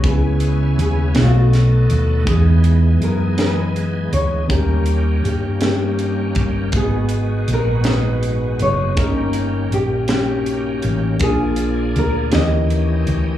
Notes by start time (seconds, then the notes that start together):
0.02 C#2 C#3 G#3 B3 C#4 E4 G#4 B4, kick, closed hi-hat
0.06 G#4
0.40 closed hi-hat
0.78 D#2 G#4, closed hi-hat
1.14 B1 B2 F#3 A3 B3 C#4 D#4 F#4 A4, snare, closed hi-hat
1.18 A3 D#4 F#4
1.22 D#4
1.53 snare, closed hi-hat
1.90 D#2, closed hi-hat
1.97 E4
2.24 E2 E3 G#3 B3 D#4 G#4, kick, closed hi-hat
2.28 D#4 G#4
2.64 closed hi-hat
3.01 F#2 A#4, closed hi-hat
3.36 E3 G#3 B3 D#4 B4, snare, closed hi-hat
3.40 D#4 G#4 B4
3.76 closed hi-hat
4.13 D2 C#5, closed hi-hat
4.48 D#2 D#3 G3 A#3 C#4 D#4 F#4 G4 A#4, kick, closed hi-hat
4.57 G4
4.86 closed hi-hat
5.24 G2 G4, closed hi-hat
5.61 G3 A#3 C#4 D#4 G4 A#4, snare, closed hi-hat
5.99 closed hi-hat
6.35 G1, kick, closed hi-hat
6.72 G#1 G#2 D#3 G#3 A#3 B3 D#4 F#4 G#4, kick, closed hi-hat
6.76 B3 G#4
7.09 closed hi-hat
7.48 A#1, closed hi-hat
7.53 A#4
7.83 G#3 B3 D#4 F#4 B4, snare, closed hi-hat
7.88 B4
8.23 closed hi-hat
8.59 F#1 C#5, closed hi-hat
8.95 G1 G2 D#3 A#3 C#4 D#4 E4 G4 G#4 A#4, kick, closed hi-hat
9.04 G4 A#4
9.33 closed hi-hat
9.72 A#1 G4, closed hi-hat
10.08 A#3 C#4 D#4 F#4 C#5, snare, closed hi-hat
10.12 G4
10.18 G4
10.46 closed hi-hat
10.82 A1, closed hi-hat
11.20 A#1 A#2 F3 A#3 C#4 D4 F4 G#4 A#4, kick, closed hi-hat
11.28 D4
11.56 closed hi-hat
11.96 D2 A#4, closed hi-hat
12.31 D#2 E3 C#4 D#4 E4 G4 A#4 D#5, snare, closed hi-hat
12.70 closed hi-hat
13.07 D2, closed hi-hat